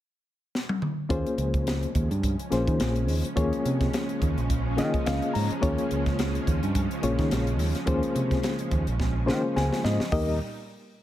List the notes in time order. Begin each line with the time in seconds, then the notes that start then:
0.55 snare
0.69 high tom
0.82 mid tom
1.09 D#2 C#3 F3 G#3 A#3 C#4 F4 G#4 C5, kick, closed hi-hat
1.26 closed hi-hat
1.38 C#2, closed hi-hat
1.54 kick, closed hi-hat
1.67 snare, closed hi-hat
1.83 closed hi-hat
1.95 D#2, kick, closed hi-hat
2.11 G2, closed hi-hat
2.23 kick, closed hi-hat
2.39 closed hi-hat
2.51 A#1 A#3 C#4 F4 G#4 C5, snare, closed hi-hat
2.67 D#3, kick, closed hi-hat
2.80 A#1, snare, closed hi-hat
2.96 closed hi-hat
3.08 D#2, open hi-hat
3.24 muted fingered electric bass stroke, closed hi-hat
3.36 D#2 A#3 C#4 F4 G#4 C#5, kick, closed hi-hat
3.53 closed hi-hat
3.65 C3, closed hi-hat
3.81 kick, snare, closed hi-hat
3.93 snare, closed hi-hat
4.09 closed hi-hat
4.22 D#2, kick, closed hi-hat
4.37 A#1, closed hi-hat
4.50 kick, closed hi-hat
4.77 D#3 A#3 C#4 F4 G#4 D#5, snare, closed hi-hat
4.94 kick, closed hi-hat
5.06 C#2 F5, snare, closed hi-hat
5.22 closed hi-hat
5.34 G#2 A#5, open hi-hat
5.51 muted fingered electric bass stroke, closed hi-hat
5.61 D#2 A#3 C#4 F4 G#4 C#5, kick, closed hi-hat
5.78 closed hi-hat
5.91 C#2, closed hi-hat
6.06 kick, snare, closed hi-hat
6.19 snare, closed hi-hat
6.35 closed hi-hat
6.47 D#2, kick, closed hi-hat
6.63 G2, closed hi-hat
6.75 kick, closed hi-hat
6.91 closed hi-hat
7.02 A#1 A#3 C#4 F4 G#4 C#5, closed hi-hat
7.19 D#3, kick, snare, closed hi-hat
7.31 A#1, snare, closed hi-hat
7.47 closed hi-hat
7.59 D#2, open hi-hat
7.75 muted fingered electric bass stroke, snare, closed hi-hat
7.86 D#2 A#3 C#4 F4 G#4 C5, kick, closed hi-hat
8.03 closed hi-hat
8.15 C3, closed hi-hat
8.31 kick, snare, closed hi-hat
8.43 snare, closed hi-hat
8.59 closed hi-hat
8.71 D#2, kick, closed hi-hat
8.87 A#1, closed hi-hat
9.00 kick, snare
9.26 D#3 A#3 C#4 F4 G#4 C5, snare
9.56 C#2 G#5, snare
9.73 snare
9.84 G#2 D#5, snare
10.00 muted fingered electric bass stroke, snare
10.10 D#2 A#2 G3 A#3 D#4 G4 A#4 D#5, kick, open hi-hat